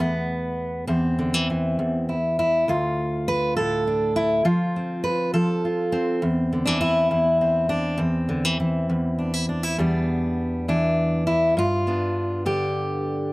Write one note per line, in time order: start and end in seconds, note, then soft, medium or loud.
0.00 0.85 E2 medium
0.00 0.87 B3 medium
0.87 1.77 E2 medium
0.87 2.15 C4 medium
1.19 1.34 D3 soft
1.34 1.48 E3 soft
1.50 2.65 E3 soft
1.79 2.64 E2 medium
2.09 2.38 E4 soft
2.39 2.68 E4 medium
2.68 4.46 D2 medium
2.68 3.87 F4 medium
3.28 3.56 B4 loud
3.57 4.45 A2 medium
3.57 4.46 A4 medium
3.87 4.16 D4 soft
4.16 4.44 E4 medium
4.45 5.33 F3 medium
4.45 5.63 F4 medium
4.76 5.92 C4 soft
5.04 5.33 B4 loud
5.34 6.19 F3 medium
5.34 6.22 A4 loud
5.65 6.19 F4 soft
5.92 7.25 C4 medium
6.22 7.10 E2 medium
6.53 6.67 D3 soft
6.66 7.99 E3 soft
6.66 6.80 D4 medium
6.81 7.69 E4 medium
7.11 7.98 E2 medium
7.41 7.96 C4 soft
7.69 7.99 D4 medium
7.97 8.88 E2 medium
7.97 9.78 C4 medium
8.29 8.45 D3 soft
8.45 8.59 E3 soft
8.60 9.76 E3 soft
8.89 9.76 E2 medium
9.19 9.34 D4 soft
9.34 9.48 E4 soft
9.49 9.63 D4 soft
9.63 9.78 E4 soft
9.78 11.54 E2 medium
9.78 11.87 G3 medium
9.78 11.54 B3 medium
9.78 10.68 D4 soft
10.68 11.54 E3 medium
10.68 11.26 D4 medium
11.27 11.57 E4 medium
11.57 13.31 G2 medium
11.57 12.46 F4 medium
11.87 13.31 B3 soft
11.87 13.32 D4 soft
12.46 13.33 D3 medium
12.46 13.33 G4 medium